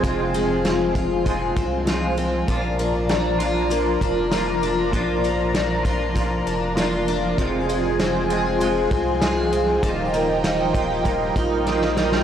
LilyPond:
<<
  \new Staff \with { instrumentName = "Analog synth pad" } { \time 4/4 \key f \dorian \tempo 4 = 98 << { <aes' c'' aes''>1 | <bes' d'' bes''>1~ | <bes' d'' bes''>1 | <aes' c'' aes''>1 |
<bes' ees'' g''>1 | } \\ { f'1~ | f'1~ | f'1 | f'1~ |
f'1 | } >> }
  \new Staff \with { instrumentName = "Twelve-string acoustic guitar" } { \time 4/4 \key f \dorian <f aes c' f'>8 aes8 c'8 f'8 aes8 c'8 f'8 c'8 | f8 bes8 d'8 f'8 bes8 d'8 f'8 d'8 | f8 bes8 d'8 f'8 bes8 d'8 f'8 d'8 | f8 aes8 c'8 aes'8 aes8 c'8 aes'8 c'8 |
f8 bes8 ees'8 g'8 bes8 ees'8 g'8 ees'8 | }
  \new Staff \with { instrumentName = "Clean electric guitar" } { \time 4/4 \key f \dorian <f, c f aes c' f'>2 <f aes c' f'>4 <f aes c' f'>4 | <bes, f bes d' f'>4. <bes d' f'>8 <f bes d' f'>4 <f bes d' f'>4 | <bes, f bes d' f'>4. <bes d' f'>8 <f bes d' f'>4 <f bes d' f'>4 | <f, c f aes c' f'>4. <f aes c' f'>8 <f aes c' f'>4 <f aes c' f'>4 |
<ees g bes ees' f'>4. <bes ees' f'>8 <g bes ees' f'>4 <g bes ees' f'>4 | }
  \new Staff \with { instrumentName = "Sub bass" } { \clef bass \time 4/4 \key f \dorian f,,2~ f,,8 c,4. | bes,,2~ bes,,8 f,,4. | bes,,2~ bes,,8 f,,4. | f,,2~ f,,8 c,4. |
ees,,2~ ees,,8 bes,,4. | }
  \new DrumStaff \with { instrumentName = "Drums" } \drummode { \time 4/4 <hh bd>8 hh8 <hh sn>8 <hh bd>8 <hh bd>8 <hh bd>8 <hh sn>8 hh8 | <hh bd>8 hh8 <hh sn>8 hh8 hh8 <hh bd>8 <hh sn>8 hh8 | <hh bd>8 hh8 <hh sn>8 <hh bd>8 <hh bd>8 hh8 <hh sn>8 hh8 | <hh bd>8 hh8 <hh sn>8 hh8 hh8 <hh bd>8 <hh sn>8 hh8 |
<hh bd>8 hh8 <hh sn>8 <hh bd>8 <hh bd>8 <hh bd>8 sn16 sn16 sn16 sn16 | }
>>